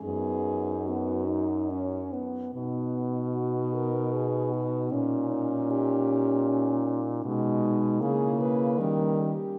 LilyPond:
<<
  \new Staff \with { instrumentName = "French horn" } { \time 3/4 \key b \major \tempo 4 = 76 gis'4 fis'4 r4 | r4 fis'8 ais'8 gis'8 fis'8 | cis'8 dis'8 g'4. r8 | \key gis \minor r4 gis'8 b'8 ais'8 g'8 | }
  \new Staff \with { instrumentName = "French horn" } { \time 3/4 \key b \major dis'2 cis'8 r8 | dis'2.~ | dis'2. | \key gis \minor dis'4 e'4 cis'8 r8 | }
  \new Staff \with { instrumentName = "French horn" } { \time 3/4 \key b \major b4 b8 dis'8 cis'8 b8 | b2. | cis'2. | \key gis \minor gis4 ais4 g8 r8 | }
  \new Staff \with { instrumentName = "French horn" } { \clef bass \time 3/4 \key b \major fis,2~ fis,8 r8 | b,2. | ais,2. | \key gis \minor b,4 cis4 dis8 r8 | }
>>